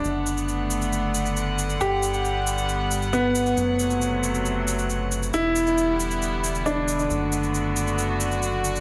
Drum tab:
SH |x-xxx-xxx-xxx-xx|x-xxx-xxx-xxx-xx|x-xxx-xxx-xxx-xx|x-xxx-xxx-xxx-xx|

SH |x-xxx-xxx-xxx-xx|